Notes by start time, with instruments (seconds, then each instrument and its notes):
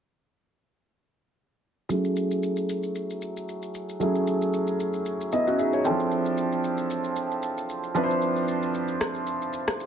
1.89 grand piano F#3 A3 C#4 E4 G#4, shaker
2.04 shaker
2.16 shaker
2.31 shaker
2.43 shaker
2.56 shaker
2.69 shaker
2.83 shaker
2.95 shaker
3.10 shaker
3.22 shaker
3.37 shaker
3.49 shaker
3.62 shaker
3.75 shaker
3.89 shaker
4.00 grand piano F#3 A3 C#4 E4 G#4, shaker
4.15 shaker
4.27 shaker
4.42 shaker
4.53 shaker
4.67 shaker
4.80 shaker
4.94 shaker
5.06 shaker
5.21 shaker
5.32 grand piano B3 E4 D#5, shaker
5.47 grand piano C#4 F#4, shaker
5.59 grand piano D#4 G#4 E5, shaker
5.73 grand piano G#4 C#5, shaker
5.84 grand piano E3 C4 D4 E4 A4 G5, shaker
5.90 grand piano F3
6.00 shaker
6.11 shaker
6.25 shaker
6.37 shaker
6.52 shaker
6.64 shaker
6.78 shaker
6.90 shaker
7.04 shaker
7.16 shaker
7.31 shaker
7.43 shaker
7.58 shaker
7.69 shaker
7.83 shaker
7.94 grand piano F3 C4 D4 E4 B4, shaker
8.03 grand piano C5
8.10 shaker
8.22 shaker
8.36 shaker
8.48 shaker
8.63 shaker
8.74 shaker
8.88 shaker
9.01 cross-stick, shaker
9.14 shaker
9.27 shaker
9.42 shaker
9.53 shaker
9.68 cross-stick, shaker
9.80 shaker